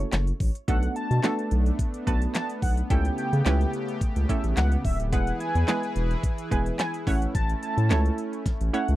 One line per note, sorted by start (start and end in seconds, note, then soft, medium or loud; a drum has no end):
0.00 0.31 A3 medium
0.00 0.31 C#4 medium
0.00 0.31 E4 medium
0.00 0.31 F#4 medium
0.00 0.31 A4 medium
0.12 0.32 F#1 loud
0.12 snare loud
0.12 clap loud
0.12 closed hi-hat loud
0.27 closed hi-hat medium
0.40 0.51 A1 medium
0.40 kick loud
0.40 open hi-hat medium
0.55 closed hi-hat medium
0.68 0.88 B1 loud
0.68 0.99 A3 medium
0.68 2.88 A3 medium
0.68 0.99 B3 medium
0.68 5.09 B3 medium
0.68 0.99 D4 medium
0.68 2.88 D4 loud
0.68 0.99 F#4 medium
0.68 0.99 A4 medium
0.68 0.93 F#5 loud
0.68 kick loud
0.68 closed hi-hat medium
0.83 closed hi-hat medium
0.96 1.48 A5 medium
0.96 closed hi-hat medium
1.11 1.20 B2 loud
1.11 closed hi-hat medium
1.23 1.70 A3 medium
1.23 1.70 B3 medium
1.23 1.70 D4 medium
1.23 1.70 F#4 medium
1.23 1.70 A4 medium
1.23 snare medium
1.23 clap loud
1.23 closed hi-hat medium
1.39 closed hi-hat soft
1.51 1.71 B1 loud
1.51 closed hi-hat medium
1.66 closed hi-hat medium
1.79 kick medium
1.79 closed hi-hat medium
1.94 closed hi-hat medium
2.07 2.27 B1 loud
2.07 2.53 A3 medium
2.07 2.54 B3 medium
2.07 2.54 D4 medium
2.07 2.54 F#4 medium
2.07 2.54 B4 medium
2.07 2.20 A5 medium
2.07 kick medium
2.07 closed hi-hat medium
2.22 closed hi-hat medium
2.35 2.48 A5 medium
2.35 snare loud
2.35 clap loud
2.35 closed hi-hat loud
2.49 closed hi-hat medium
2.62 2.82 B1 medium
2.62 2.75 F#5 medium
2.62 kick loud
2.62 open hi-hat medium
2.77 closed hi-hat medium
2.90 3.10 C#2 loud
2.90 5.10 C#3 medium
2.90 3.21 A3 medium
2.90 5.10 A3 medium
2.90 3.21 C#4 medium
2.90 3.21 E4 medium
2.90 5.10 G4 loud
2.90 3.21 G4 medium
2.90 3.21 A4 medium
2.90 3.15 G5 loud
2.90 kick loud
2.90 closed hi-hat medium
3.05 closed hi-hat medium
3.18 3.70 G5 medium
3.18 closed hi-hat medium
3.33 3.42 C#3 loud
3.33 closed hi-hat medium
3.46 3.65 C#2 loud
3.46 3.92 A3 medium
3.46 3.92 C#4 medium
3.46 3.93 E4 medium
3.46 3.93 G4 medium
3.46 3.93 B4 medium
3.46 snare medium
3.46 clap loud
3.46 closed hi-hat medium
3.61 closed hi-hat medium
3.73 closed hi-hat medium
3.88 closed hi-hat soft
4.01 kick medium
4.01 closed hi-hat medium
4.16 4.25 C#2 loud
4.16 closed hi-hat medium
4.29 4.76 A3 medium
4.29 4.76 C#4 medium
4.29 4.76 E4 medium
4.29 4.76 G4 medium
4.29 4.76 A4 medium
4.29 4.42 E5 medium
4.29 kick medium
4.29 closed hi-hat medium
4.44 4.53 A1 medium
4.44 closed hi-hat medium
4.57 4.77 C#2 medium
4.57 4.70 F#5 medium
4.57 snare loud
4.57 clap loud
4.57 closed hi-hat loud
4.72 closed hi-hat medium
4.85 5.14 D1 loud
4.85 4.98 E5 medium
4.85 kick medium
4.85 open hi-hat medium
5.00 closed hi-hat medium
5.12 5.32 E1 loud
5.12 7.05 E3 medium
5.12 5.43 G#3 medium
5.12 5.43 B3 medium
5.12 5.43 E4 medium
5.12 8.96 E4 medium
5.12 7.05 G#4 medium
5.12 5.44 G#4 medium
5.12 7.05 B4 medium
5.12 5.44 B4 medium
5.12 5.37 F#5 loud
5.12 kick loud
5.12 closed hi-hat medium
5.27 closed hi-hat medium
5.40 5.93 G#5 medium
5.40 closed hi-hat medium
5.55 5.64 E2 loud
5.55 closed hi-hat medium
5.68 6.15 G#3 medium
5.68 6.15 B3 medium
5.68 6.15 E4 medium
5.68 6.15 G#4 medium
5.68 6.15 B4 medium
5.68 snare medium
5.68 clap loud
5.68 closed hi-hat loud
5.83 closed hi-hat medium
5.96 6.15 E1 medium
5.96 closed hi-hat medium
6.11 closed hi-hat soft
6.23 kick loud
6.23 closed hi-hat medium
6.38 closed hi-hat medium
6.51 6.71 E1 loud
6.51 6.98 G#3 medium
6.51 6.98 B3 medium
6.51 6.98 E4 medium
6.51 6.98 G#4 medium
6.51 6.98 B4 medium
6.51 6.64 G#5 medium
6.51 kick medium
6.51 closed hi-hat medium
6.66 closed hi-hat medium
6.79 6.92 G#5 medium
6.79 snare loud
6.79 clap loud
6.79 closed hi-hat loud
6.94 closed hi-hat medium
7.07 7.26 A1 loud
7.07 7.74 A3 medium
7.07 8.96 A3 medium
7.07 7.74 C#4 medium
7.07 8.96 C#4 medium
7.07 7.74 E4 medium
7.07 7.74 A4 medium
7.07 7.74 C#5 medium
7.07 7.20 F#5 medium
7.07 kick loud
7.07 open hi-hat medium
7.22 closed hi-hat medium
7.35 7.54 A1 loud
7.35 7.59 A5 loud
7.35 kick loud
7.35 closed hi-hat medium
7.49 closed hi-hat medium
7.63 8.15 A5 medium
7.63 closed hi-hat medium
7.77 7.92 A2 loud
7.77 closed hi-hat medium
7.90 8.10 C#2 loud
7.90 8.37 A3 medium
7.90 8.37 C#4 medium
7.90 8.37 E4 medium
7.90 8.37 A4 medium
7.90 8.37 C#5 medium
7.90 snare medium
7.90 clap loud
7.90 closed hi-hat medium
8.06 closed hi-hat medium
8.18 closed hi-hat medium
8.33 closed hi-hat medium
8.46 kick medium
8.46 snare medium
8.46 closed hi-hat medium
8.61 8.70 A1 medium
8.61 closed hi-hat medium
8.73 8.96 A3 medium
8.73 8.96 C#4 medium
8.73 8.96 E4 medium
8.73 8.96 A4 medium
8.73 8.96 C#5 medium
8.73 8.87 F#5 medium
8.73 closed hi-hat medium
8.88 8.96 C#2 loud
8.88 closed hi-hat medium